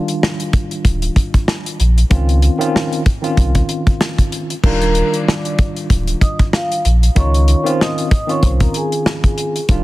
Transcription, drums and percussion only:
0.08 closed hi-hat medium
0.23 cross-stick medium
0.23 snare loud
0.40 closed hi-hat soft
0.53 kick loud
0.53 closed hi-hat medium
0.71 closed hi-hat soft
0.85 kick loud
0.85 closed hi-hat loud
1.02 closed hi-hat medium
1.16 kick loud
1.16 closed hi-hat medium
1.34 kick loud
1.34 closed hi-hat soft
1.48 cross-stick medium
1.48 snare loud
1.66 closed hi-hat medium
1.80 closed hi-hat medium
1.98 closed hi-hat medium
2.11 kick loud
2.11 closed hi-hat medium
2.29 closed hi-hat medium
2.42 closed hi-hat medium
2.61 closed hi-hat medium
2.76 cross-stick medium
2.76 snare loud
2.93 closed hi-hat soft
3.06 kick loud
3.06 closed hi-hat medium
3.24 closed hi-hat soft
3.37 kick loud
3.37 closed hi-hat medium
3.55 kick medium
3.55 closed hi-hat medium
3.69 closed hi-hat medium
3.87 kick loud
3.87 closed hi-hat soft
4.01 cross-stick loud
4.01 snare loud
4.18 kick medium
4.18 closed hi-hat medium
4.32 closed hi-hat medium
4.50 closed hi-hat medium
4.64 kick loud
4.64 crash medium
4.82 closed hi-hat medium
4.95 closed hi-hat medium
5.14 closed hi-hat medium
5.28 cross-stick medium
5.28 snare loud
5.45 closed hi-hat medium
5.59 kick loud
5.59 closed hi-hat medium
5.76 closed hi-hat soft
5.90 kick loud
5.90 closed hi-hat loud
6.07 closed hi-hat medium
6.21 kick loud
6.21 closed hi-hat medium
6.39 kick loud
6.39 closed hi-hat soft
6.53 cross-stick medium
6.53 snare loud
6.72 closed hi-hat medium
6.85 closed hi-hat medium
7.03 closed hi-hat medium
7.16 kick loud
7.16 closed hi-hat medium
7.34 closed hi-hat medium
7.48 closed hi-hat medium
7.67 closed hi-hat medium
7.81 cross-stick medium
7.81 snare loud
7.98 closed hi-hat soft
8.11 kick loud
8.11 closed hi-hat medium
8.29 closed hi-hat soft
8.43 kick loud
8.43 closed hi-hat loud
8.60 kick medium
8.60 closed hi-hat medium
8.74 closed hi-hat medium
8.92 closed hi-hat medium
9.06 cross-stick loud
9.06 snare loud
9.24 kick medium
9.24 closed hi-hat medium
9.38 closed hi-hat medium
9.56 closed hi-hat medium
9.69 kick loud
9.69 closed hi-hat medium

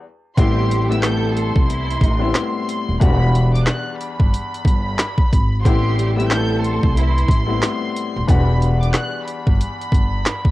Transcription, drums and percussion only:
0.38 kick loud
0.38 closed hi-hat medium
0.71 closed hi-hat medium
0.92 closed hi-hat medium
1.03 snare loud
1.03 clap loud
1.03 closed hi-hat medium
1.37 closed hi-hat medium
1.56 kick loud
1.70 closed hi-hat loud
1.90 closed hi-hat medium
2.01 kick loud
2.01 closed hi-hat medium
2.35 snare loud
2.35 clap loud
2.35 closed hi-hat loud
2.69 closed hi-hat medium
3.01 kick loud
3.01 closed hi-hat medium
3.35 closed hi-hat medium
3.55 closed hi-hat medium
3.67 snare loud
3.67 clap loud
3.67 closed hi-hat medium
4.01 closed hi-hat medium
4.20 kick loud
4.34 closed hi-hat loud
4.54 closed hi-hat medium
4.65 kick loud
4.65 closed hi-hat medium
4.99 snare loud
4.99 clap loud
4.99 closed hi-hat loud
5.18 kick loud
5.33 kick loud
5.33 closed hi-hat medium
5.65 kick loud
5.65 closed hi-hat medium
5.99 closed hi-hat medium
6.20 closed hi-hat medium
6.31 snare loud
6.31 clap medium
6.31 closed hi-hat medium
6.65 closed hi-hat medium
6.83 kick loud
6.97 closed hi-hat loud
7.18 closed hi-hat medium
7.29 kick medium
7.29 closed hi-hat medium
7.62 snare loud
7.62 clap loud
7.62 closed hi-hat loud
7.96 closed hi-hat medium
8.29 kick loud
8.29 closed hi-hat medium
8.62 closed hi-hat medium
8.83 closed hi-hat medium
8.94 snare loud
8.94 clap loud
8.94 closed hi-hat medium
9.28 closed hi-hat medium
9.47 kick loud
9.61 closed hi-hat loud
9.81 closed hi-hat medium
9.92 kick medium
9.92 closed hi-hat medium
10.26 snare loud
10.26 clap loud
10.26 closed hi-hat loud
10.45 kick medium

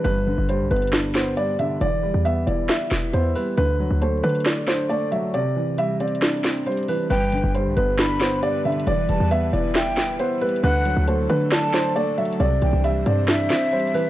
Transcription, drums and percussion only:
0.05 closed hi-hat medium
0.49 closed hi-hat medium
0.71 closed hi-hat soft
0.76 closed hi-hat medium
0.82 closed hi-hat medium
0.87 closed hi-hat medium
0.93 snare loud
0.93 closed hi-hat medium
1.15 snare loud
1.15 closed hi-hat medium
1.37 closed hi-hat medium
1.59 closed hi-hat medium
1.81 closed hi-hat medium
2.25 closed hi-hat medium
2.47 closed hi-hat medium
2.69 snare loud
2.69 closed hi-hat medium
2.91 snare medium
3.13 closed hi-hat medium
3.35 open hi-hat medium
3.57 closed hi-hat medium
4.02 closed hi-hat medium
4.24 closed hi-hat soft
4.29 closed hi-hat medium
4.35 closed hi-hat medium
4.40 closed hi-hat medium
4.46 snare loud
4.46 closed hi-hat medium
4.68 snare medium
4.68 closed hi-hat medium
4.90 closed hi-hat medium
5.12 closed hi-hat medium
5.34 closed hi-hat medium
5.78 closed hi-hat medium
6.00 closed hi-hat medium
6.08 closed hi-hat medium
6.15 closed hi-hat medium
6.22 snare loud
6.22 closed hi-hat medium
6.30 closed hi-hat medium
6.37 closed hi-hat medium
6.44 snare loud
6.66 closed hi-hat medium
6.72 closed hi-hat medium
6.77 closed hi-hat medium
6.83 closed hi-hat soft
6.88 open hi-hat medium
7.10 closed hi-hat medium
7.32 closed hi-hat medium
7.55 closed hi-hat medium
7.77 closed hi-hat medium
7.99 snare loud
7.99 closed hi-hat medium
8.21 snare loud
8.21 closed hi-hat medium
8.43 closed hi-hat medium
8.65 closed hi-hat soft
8.72 closed hi-hat medium
8.80 closed hi-hat medium
8.87 closed hi-hat medium
9.09 closed hi-hat medium
9.31 closed hi-hat medium
9.53 closed hi-hat medium
9.75 snare loud
9.75 closed hi-hat medium
9.97 snare medium
9.97 closed hi-hat medium
10.19 closed hi-hat medium
10.41 closed hi-hat soft
10.41 open hi-hat medium
10.49 closed hi-hat medium
10.56 closed hi-hat medium
10.63 closed hi-hat medium
10.85 closed hi-hat medium
11.07 closed hi-hat medium
11.30 closed hi-hat medium
11.52 snare loud
11.52 closed hi-hat medium
11.74 snare loud
11.74 closed hi-hat medium
11.96 closed hi-hat medium
12.18 closed hi-hat soft
12.25 closed hi-hat medium
12.33 closed hi-hat medium
12.40 closed hi-hat medium
12.62 closed hi-hat medium
12.84 closed hi-hat medium
13.06 closed hi-hat medium
13.28 snare loud
13.28 closed hi-hat medium
13.50 snare loud
13.50 closed hi-hat medium
13.58 closed hi-hat medium
13.65 closed hi-hat medium
13.72 closed hi-hat medium
13.80 closed hi-hat medium
13.87 closed hi-hat medium
13.94 open hi-hat medium

